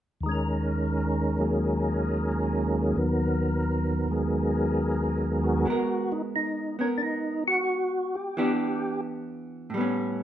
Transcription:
0.21 tonewheel organ D#2 D#3
0.26 tonewheel organ G#3 C#4
0.31 tonewheel organ A#4
1.38 tonewheel organ D#3 F#3 A#3 G#4
2.96 tonewheel organ D#2 D#3 F#3 B3 A#4
4.08 tonewheel organ D#3 G#3 G#4
5.44 tonewheel organ F#4
5.65 hollow-body jazz guitar G#3 B3
5.70 hollow-body jazz guitar A#4
6.12 tonewheel organ D#4
6.36 tonewheel organ D#4
6.79 hollow-body jazz guitar B3 A#4, tonewheel organ C#4
6.98 tonewheel organ D4
7.03 tonewheel organ D#4
7.48 tonewheel organ F#4
8.15 tonewheel organ G4
8.37 hollow-body jazz guitar E3 B3 D4 G4
9.70 hollow-body jazz guitar A2
9.74 hollow-body jazz guitar G3 B3
9.81 hollow-body jazz guitar C#4

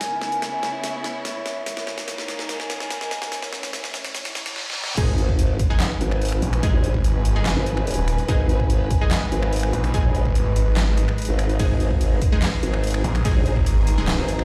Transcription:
Already playing: ambient pad G#5, riser
0.01 string section C#3 B3 E4, ambient pad E4, snare, closed hi-hat
0.06 ambient pad C#5
0.22 snare
0.32 closed hi-hat
0.42 snare, closed hi-hat
0.63 snare, closed hi-hat
0.76 ambient pad B5
0.84 snare, closed hi-hat
1.04 snare, closed hi-hat
1.25 snare, closed hi-hat
1.46 snare, closed hi-hat
1.66 string section G#2 D#3 A#3, ambient pad D#4, snare, closed hi-hat
1.77 snare
1.85 ambient pad A#4, snare
1.98 snare, closed hi-hat
2.08 snare, closed hi-hat
2.16 ambient pad G#5, snare
2.28 snare, closed hi-hat
2.39 snare
2.49 snare, closed hi-hat
2.60 snare
2.70 snare, closed hi-hat
2.80 snare
2.91 snare, closed hi-hat
3.01 snare
3.11 snare, closed hi-hat
3.22 snare
3.32 string section A2 E3 C#4, ambient pad E4, snare, closed hi-hat
3.43 snare
3.53 snare
3.63 snare, closed hi-hat
3.73 ambient pad C#5, snare, closed hi-hat
3.84 snare
3.94 snare, closed hi-hat
4.05 ambient pad A5, snare
4.15 snare, closed hi-hat, reverse cymbal
4.25 snare
4.35 snare, closed hi-hat
4.46 snare
4.56 snare
4.70 snare
4.84 snare
4.97 wobble bass G#1, synth stab G#3 D#4 G#4, string section G#3 D#4 B4, ambient pad D#4, kick, closed hi-hat, crash, sub drop
5.18 closed hi-hat
5.22 ambient pad G#5
5.29 ambient pad B4, kick
5.39 closed hi-hat
5.59 kick, closed hi-hat
5.70 synth stab G#3 D#4 G#4
5.80 snare, clap, closed hi-hat
6.01 wobble bass G#1, closed hi-hat
6.11 finger snap
6.22 closed hi-hat
6.25 closed hi-hat
6.28 finger snap, closed hi-hat
6.42 detuned saw bass A#1, closed hi-hat
6.53 finger snap, closed hi-hat
6.63 synth stab G#3 D#4 G#4, kick, closed hi-hat
6.74 wobble bass A#1
6.84 closed hi-hat
6.94 detuned saw bass G#1, kick
7.04 closed hi-hat
7.25 closed hi-hat
7.36 detuned saw bass G1, synth stab G#3 D#4 G#4
7.46 snare, clap, closed hi-hat
7.56 wobble bass G#1
7.66 closed hi-hat
7.77 finger snap
7.87 closed hi-hat
7.91 closed hi-hat
7.94 detuned saw bass D#1, closed hi-hat
8.08 finger snap, closed hi-hat
8.18 closed hi-hat
8.28 wobble bass G#1, synth stab G#3 D#4 G#4, kick, closed hi-hat
8.49 closed hi-hat
8.60 kick
8.70 closed hi-hat
8.91 kick, closed hi-hat
9.01 synth stab G#3 D#4 G#4
9.11 snare, clap, closed hi-hat
9.32 wobble bass G#1, closed hi-hat
9.43 finger snap
9.53 closed hi-hat
9.56 closed hi-hat
9.59 finger snap, closed hi-hat
9.73 detuned saw bass A#1, closed hi-hat
9.84 finger snap, closed hi-hat
9.94 synth stab G#3 D#4 G#4, kick, closed hi-hat
10.05 wobble bass A#1
10.15 closed hi-hat
10.25 detuned saw bass G#1, kick
10.35 closed hi-hat
10.56 closed hi-hat
10.77 snare, clap, closed hi-hat
10.97 closed hi-hat
11.08 finger snap
11.18 closed hi-hat
11.22 closed hi-hat
11.25 wobble bass G#1, closed hi-hat
11.39 finger snap, closed hi-hat
11.49 closed hi-hat
11.59 wobble bass G#1, synth stab G#3 D#4 G#4, string section G#4, kick, closed hi-hat, ride
11.67 ambient pad A#5
11.80 closed hi-hat
11.91 kick
12.01 closed hi-hat, ride
12.22 kick, closed hi-hat
12.32 synth stab G#3 D#4 G#4
12.42 snare, clap, closed hi-hat, ride
12.63 wobble bass G#1, closed hi-hat
12.74 finger snap
12.84 closed hi-hat, ride
12.87 closed hi-hat
12.90 finger snap, closed hi-hat
13.04 detuned saw bass A#1, closed hi-hat
13.15 finger snap, closed hi-hat
13.25 synth stab G#3 D#4 G#4, kick, closed hi-hat, ride
13.36 wobble bass A#1
13.46 closed hi-hat
13.56 detuned saw bass G#1, kick
13.66 closed hi-hat, ride
13.87 closed hi-hat
13.98 synth stab G#3 D#4 G#4
14.08 snare, clap, closed hi-hat, ride
14.18 wobble bass G#1
14.28 closed hi-hat
14.39 finger snap

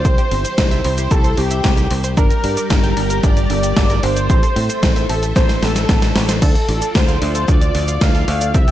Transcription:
Already playing: analog synth lead C5
0.05 fingered electric bass C2, synth arpeggio sound C4, string machine E4 G4 C5, kick, closed hi-hat, cabasa
0.18 synth arpeggio sound G4, closed hi-hat, cabasa
0.31 fingered electric bass G1, synth arpeggio sound C4, open hi-hat
0.45 synth arpeggio sound C5, closed hi-hat, cabasa
0.58 fingered electric bass C2, synth arpeggio sound C4, kick, snare, closed hi-hat, cabasa
0.71 synth arpeggio sound E5, closed hi-hat, cabasa
0.84 fingered electric bass C2, synth arpeggio sound C4, analog synth lead C5, open hi-hat
0.98 synth arpeggio sound G4, closed hi-hat, cabasa
1.11 fingered electric bass C2, synth arpeggio sound C4, analog synth lead A4, kick, closed hi-hat, cabasa
1.24 synth arpeggio sound C5, closed hi-hat, cabasa
1.37 fingered electric bass C2, synth arpeggio sound C4, analog synth lead G4, open hi-hat
1.51 synth arpeggio sound E5, closed hi-hat, cabasa
1.64 fingered electric bass C2, synth arpeggio sound C4, kick, snare, closed hi-hat, cabasa
1.77 synth arpeggio sound G4, closed hi-hat, cabasa
1.91 fingered electric bass C2, synth arpeggio sound C4, open hi-hat
2.04 synth arpeggio sound C5, closed hi-hat, cabasa
2.17 fingered electric bass G1, string machine G3 G4 A#4 D5, synth arpeggio sound D4, analog synth lead A#4, kick, closed hi-hat, cabasa
2.30 synth arpeggio sound A#4, closed hi-hat, cabasa
2.44 fingered electric bass G2, synth arpeggio sound D4, open hi-hat
2.57 synth arpeggio sound D5, closed hi-hat, cabasa
2.70 fingered electric bass G1, synth arpeggio sound D4, analog synth lead A#4, kick, snare, closed hi-hat, cabasa
2.84 synth arpeggio sound G5, closed hi-hat, cabasa
2.97 fingered electric bass G1, synth arpeggio sound D4, open hi-hat
3.10 synth arpeggio sound A#4, closed hi-hat, cabasa
3.23 fingered electric bass G1, synth arpeggio sound D4, analog synth lead D5, kick, closed hi-hat, cabasa
3.37 synth arpeggio sound D5, closed hi-hat, cabasa
3.50 fingered electric bass G1, synth arpeggio sound D4, open hi-hat
3.63 synth arpeggio sound G5, closed hi-hat, cabasa
3.77 fingered electric bass G1, synth arpeggio sound D4, kick, snare, closed hi-hat, cabasa
3.90 synth arpeggio sound A#4, closed hi-hat, cabasa
4.03 fingered electric bass G1, synth arpeggio sound D4, analog synth lead C5, open hi-hat
4.16 synth arpeggio sound D5, closed hi-hat, cabasa
4.30 fingered electric bass A1, string machine A3 A4 C5 E5, synth arpeggio sound C4, kick, closed hi-hat, cabasa
4.43 synth arpeggio sound A4, closed hi-hat, cabasa
4.56 fingered electric bass A2, synth arpeggio sound C4, open hi-hat
4.69 synth arpeggio sound C5, closed hi-hat, cabasa
4.83 fingered electric bass A1, synth arpeggio sound C4, kick, snare, closed hi-hat, cabasa
4.96 synth arpeggio sound E5, closed hi-hat, cabasa
5.09 fingered electric bass A1, synth arpeggio sound C4, analog synth lead A4, open hi-hat
5.23 synth arpeggio sound A4, closed hi-hat, cabasa
5.36 fingered electric bass A1, synth arpeggio sound C4, analog synth lead C5, kick, snare, closed hi-hat, cabasa
5.49 synth arpeggio sound C5, snare, open hi-hat, cabasa
5.62 fingered electric bass A1, synth arpeggio sound C4, analog synth lead A4, snare, open hi-hat
5.76 synth arpeggio sound E5, snare, closed hi-hat, cabasa
5.89 fingered electric bass A1, synth arpeggio sound C4, kick, snare, closed hi-hat, cabasa
6.02 synth arpeggio sound A4, snare, closed hi-hat, cabasa
6.15 fingered electric bass A1, synth arpeggio sound C4, snare, open hi-hat
6.29 synth arpeggio sound C5, snare, closed hi-hat, cabasa
6.42 fingered electric bass D2, synth arpeggio sound D4, string machine F4 D5, analog synth lead A4, kick, closed hi-hat, crash, cabasa
6.55 synth arpeggio sound A4, closed hi-hat, cabasa
6.69 fingered electric bass A1, synth arpeggio sound D4, open hi-hat
6.82 synth arpeggio sound D5, closed hi-hat, cabasa
6.95 fingered electric bass D2, synth arpeggio sound D4, analog synth lead C5, kick, snare, closed hi-hat, cabasa
7.08 synth arpeggio sound F5, closed hi-hat, cabasa
7.22 fingered electric bass D2, synth arpeggio sound D4, open hi-hat
7.35 synth arpeggio sound A4, closed hi-hat, cabasa
7.48 fingered electric bass D2, synth arpeggio sound D4, analog synth lead D5, kick, closed hi-hat, cabasa
7.62 synth arpeggio sound D5, closed hi-hat, cabasa
7.75 fingered electric bass D2, synth arpeggio sound D4, open hi-hat
7.88 synth arpeggio sound F5, closed hi-hat, cabasa
8.01 fingered electric bass D2, synth arpeggio sound D4, analog synth lead F5, kick, snare, closed hi-hat, cabasa
8.15 synth arpeggio sound A4, closed hi-hat, cabasa
8.28 fingered electric bass D2, synth arpeggio sound D4, open hi-hat
8.41 synth arpeggio sound D5, closed hi-hat, cabasa
8.54 fingered electric bass C2, synth arpeggio sound C4, string machine E4 G4 C5, analog synth lead E5, kick, closed hi-hat, cabasa
8.68 synth arpeggio sound G4, closed hi-hat, cabasa

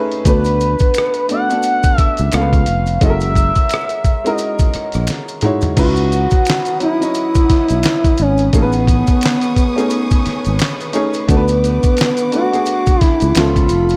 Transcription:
Already playing: upright piano G#3 A3 C#4 D#4 G#4 B4 C#5 E5 G#5 A5
0.12 closed hi-hat
0.25 fretless electric bass D2, upright piano A3 B3 D4 F#4 B4, analog synth lead B4, kick, closed hi-hat, maracas
0.45 closed hi-hat, maracas
0.61 closed hi-hat, maracas
0.79 muted fretless electric bass stroke, kick, closed hi-hat, maracas
0.94 finger snap, closed hi-hat, maracas
0.98 cross-stick
1.14 closed hi-hat, maracas
1.28 upright piano A3 B3 D4 F#4 D5, analog synth lead F#5, closed hi-hat, maracas
1.48 upright piano A3 B3 D4 F#4 A4, closed hi-hat, maracas
1.63 closed hi-hat, maracas
1.83 kick, closed hi-hat, maracas
1.98 analog synth lead E5, muted fretless electric bass stroke, kick, cross-stick, closed hi-hat, maracas
2.17 fretless electric bass C#2, closed hi-hat, maracas
2.32 fretless electric bass C#2, upright piano A3 B3 C#4 F4 A4, analog synth lead F5, finger snap, cross-stick, closed hi-hat, maracas
2.41 upright piano B4
2.53 kick, closed hi-hat, maracas
2.66 fretless electric bass F1, closed hi-hat, maracas
2.86 closed hi-hat, maracas
3.01 fretless electric bass F#1, upright piano G#3 C#4 E4 F#4 A4, analog synth lead E5, kick, closed hi-hat, maracas
3.10 upright piano A#4
3.21 closed hi-hat, maracas
3.35 kick, closed hi-hat, maracas
3.55 muted fretless electric bass stroke, kick, closed hi-hat, maracas
3.69 finger snap, closed hi-hat, maracas
3.74 cross-stick
3.89 closed hi-hat, maracas
4.04 kick, closed hi-hat, maracas
4.24 upright piano G#3 C#4 E4 F#4 A#4, closed hi-hat, maracas
4.31 analog synth lead D#5
4.38 closed hi-hat, maracas
4.59 kick, closed hi-hat, maracas
4.74 muted fretless electric bass stroke, cross-stick, closed hi-hat, maracas
4.92 fretless electric bass A#1, cross-stick, closed hi-hat, maracas
5.07 finger snap, snare, closed hi-hat, maracas
5.28 closed hi-hat, maracas
5.41 upright piano G#3 D#4 E4 F#4 C#5, closed hi-hat, mid tom, maracas
5.61 closed hi-hat, floor tom, maracas
5.76 fretless electric bass C#2, upright piano F#3 C#4 D#4 E4 B4, analog synth lead F#4, string section B4 F#5 D#6, kick, closed hi-hat, crash, maracas
5.96 closed hi-hat, maracas
6.12 closed hi-hat, maracas
6.31 muted fretless electric bass stroke, kick, closed hi-hat, maracas
6.45 finger snap, closed hi-hat, maracas
6.50 snare, clap
6.65 closed hi-hat, maracas
6.80 upright piano F#3 C#4 D#4 E4 F#4, analog synth lead E4, closed hi-hat, maracas
7.00 upright piano F#3 C#4 E4 C#5 D#5, closed hi-hat, maracas
7.15 closed hi-hat, maracas
7.35 kick, closed hi-hat, maracas
7.50 muted fretless electric bass stroke, kick, snare, closed hi-hat, maracas
7.68 fretless electric bass B1, closed hi-hat, maracas
7.83 finger snap, snare, clap, closed hi-hat, maracas
8.04 kick, closed hi-hat, maracas
8.18 fretless electric bass G#1, analog synth lead C#4, closed hi-hat, maracas
8.38 closed hi-hat, maracas
8.53 fretless electric bass A1, upright piano A3 C#4 D#4 G#4 A4, analog synth lead B3, string section G#5 C#6 D#6, kick, closed hi-hat, maracas
8.62 upright piano B4
8.72 closed hi-hat, maracas
8.87 kick, closed hi-hat, maracas
9.07 muted fretless electric bass stroke, kick, closed hi-hat, maracas
9.21 finger snap, closed hi-hat, maracas
9.26 snare, clap
9.41 closed hi-hat, maracas
9.56 kick, closed hi-hat, maracas
9.76 upright piano A3 C#4 D#4 G#4 C#5, closed hi-hat, maracas
9.90 closed hi-hat, maracas
10.11 kick, closed hi-hat, maracas
10.26 muted fretless electric bass stroke, snare, closed hi-hat, maracas
10.45 fretless electric bass G#1, closed hi-hat, maracas
10.59 finger snap, snare, clap, closed hi-hat, maracas
10.80 closed hi-hat, maracas
10.93 upright piano A3 C#4 D#4 G#4 C#5, closed hi-hat, maracas
11.14 closed hi-hat, maracas
11.28 fretless electric bass D2, upright piano A3 B3 D4 F#4 A4, string section F#5 D6, kick, closed hi-hat, maracas
11.32 analog synth lead B3
11.37 upright piano B4
11.48 closed hi-hat, maracas
11.64 closed hi-hat, maracas
11.83 kick, closed hi-hat, maracas
11.97 finger snap, closed hi-hat, maracas
12.01 snare, clap
12.17 closed hi-hat, maracas
12.31 upright piano A3 B3 D4 F#4 B4, analog synth lead F#4, closed hi-hat, maracas
12.51 upright piano A3 B3 D4 F#4 G#4, closed hi-hat, maracas
12.66 closed hi-hat, maracas
12.86 kick, closed hi-hat, maracas
13.01 analog synth lead E4, muted fretless electric bass stroke, kick, snare, closed hi-hat, maracas
13.20 fretless electric bass C#2, closed hi-hat, maracas
13.35 fretless electric bass C#2, upright piano F3 B3 C#4 A4 E5, string section F4 A4 B5, analog synth lead F4, finger snap, snare, clap, closed hi-hat, maracas
13.56 kick, closed hi-hat, maracas
13.69 fretless electric bass F1, closed hi-hat, maracas
13.89 closed hi-hat, maracas

